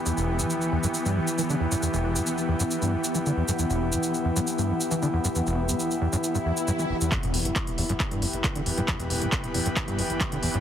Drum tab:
HH |----------------|----------------|----------------|----------------|
SH |xx-xxx-xxx-xxx-x|xx-xxx-xxx-xxx-x|xx-xxx-xxx-xxx-x|xx-xxx-xxx-xxx-x|
CP |----------------|----------------|----------------|----------------|
BD |----------------|----------------|----------------|----------------|

HH |xxoxxxoxxxoxxxox|xxoxxxoxxxoxxxox|
SH |----------------|----------------|
CP |x---x---x---x---|x---x---x---x---|
BD |o---o---o---o---|o---o---o---o---|